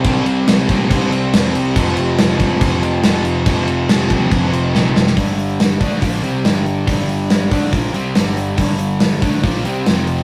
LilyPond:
<<
  \new Staff \with { instrumentName = "Distorted electric guitar" } { \clef bass \time 4/4 \key g \minor \tempo 4 = 140 <c g c' ees'>8 <c g c' ees'>8 <c g c' ees'>8 <c g c' ees'>8 <c g c' ees'>8 <c g c' ees'>8 <c g c' ees'>8 <c g c' ees'>8 | <f, c f a c'>8 <f, c f a c'>8 <f, c f a c'>8 <f, c f a c'>8 <f, c f a c'>8 <f, c f a c'>8 <f, c f a c'>8 <f, c f a c'>8 | <f, c f a c'>8 <f, c f a c'>8 <f, c f a c'>8 <f, c f a c'>8 <f, c f a c'>8 <f, c f a c'>8 <f, c f a c'>8 <f, c f a c'>8 | r1 |
r1 | r1 | }
  \new Staff \with { instrumentName = "Distorted electric guitar" } { \clef bass \time 4/4 \key g \minor <c g c'>4. <c g c'>2~ <c g c'>8 | <f, c f>4. <f, c f>2~ <f, c f>8 | <f, c f>4. <f, c f>2~ <f, c f>8 | <g, d g>4. <d a d'>8 <bes, f bes>8 <c g c'>8 <g, d g>4 |
<g, d g>4. <d a d'>8 <bes, f bes>8 <c g c'>8 <g, d g>4 | <g, d g>4. <d a d'>8 <bes, f bes>8 <c g c'>8 <f, c f>4 | }
  \new Staff \with { instrumentName = "Distorted electric guitar" } { \clef bass \time 4/4 \key g \minor <c g c'>2~ <c g c'>8 <c g c'>8 <c g c'>4 | <f, c f>2~ <f, c f>8 <f, c f>8 <f, c f>4 | <f, c f>2~ <f, c f>8 <f, c f>8 <f, c f>4 | <g, d g>4. <d a d'>8 <bes, f bes>8 <c g c'>8 <g, d g>4 |
<g, d g>4. <d a d'>8 <bes, f bes>8 <c g c'>8 <g, d g>4 | <g, d g>4. <d a d'>8 <bes, f bes>8 <c g c'>8 <f, c f>4 | }
  \new Staff \with { instrumentName = "Picked electric bass" } { \clef bass \time 4/4 \key g \minor c,8 c,8 c,8 bes,8 c,8 c,8 f,8 c,8 | f,,8 f,,8 f,,8 f,,8 f,,4 f,,4 | f,,8 f,,8 f,,8 ees,8 f,,8 f,,8 bes,,8 fis,,8 | g,,4. d,8 bes,,8 c,8 g,,4 |
g,,4. d,8 bes,,8 c,8 g,,4 | g,,4. d,8 bes,,8 c,8 f,,4 | }
  \new DrumStaff \with { instrumentName = "Drums" } \drummode { \time 4/4 <cymc bd>8 cymc8 <cymc sn>8 <cymc bd>8 <cymc bd>8 cymc8 <cymc sn>8 cymc8 | <cymc bd>8 cymc8 <cymc sn>8 <cymc bd>8 <cymc bd>8 cymc8 <cymc sn>8 cymc8 | <cymc bd>8 cymc8 <cymc sn>8 <cymc bd>8 <cymc bd>8 cymc8 sn8 sn16 sn16 | <hho bd>8 hho8 <hho sn>8 <hho bd>8 <hho bd>8 hho8 <hho sn>8 hho8 |
<hho bd>8 hho8 <hho sn>8 <hho bd>8 <hho bd>8 hho8 <hho sn>8 hho8 | <hho bd>8 hho8 <hho sn>8 <hho bd>8 <hho bd>8 hho8 <hho sn>8 hho8 | }
>>